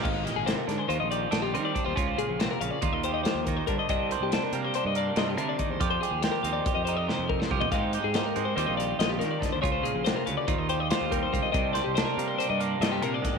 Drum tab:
CC |x-----------------|------------------|------------------|------------------|
HH |--x-x-x-x-x-x-x-x-|x-x-x-x-x-x-x-x-x-|x-x-x-x-x-x-x-x-x-|x-x-x-x-x-x-------|
SD |--o-o-o-----o-----|----o-------o-----|----o-------o-----|----o-------o--o--|
FT |------------------|------------------|------------------|-----------------o|
BD |o---------------o-|o-------o-----o-o-|o---------------o-|o-------o-----o-o-|

CC |------------------|------------------|------------------|
HH |x-x-x-x-x-x-x-x-x-|x-x-x-x-x-x-x-x-x-|x-x-x-x-x-x-x-x-x-|
SD |----o-------o-o-o-|----o-------o-----|--o-o-------o---o-|
FT |------------------|------------------|------------------|
BD |o---------------o-|o-------o-----o-o-|o---------------o-|